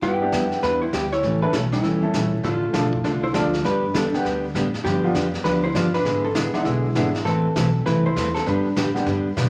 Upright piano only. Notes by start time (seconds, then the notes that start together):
0.21 G3 B3 D4 E4 G4
1.41 E3 A3 C#4 E4 A4
2.02 E3 A3 C#4 E4 A4
2.73 F3 A3 D4 F4 A4
3.33 F3 A3 D4 F4 A4
4.13 D3 G3 B3 D4 G4
5.03 F3 G3 B3 D4 F4
6.53 E3 G#3 B3 D4 E4
6.95 E3 G#3 B3 D4 E4
8.94 D3 G3 B3 D4 G4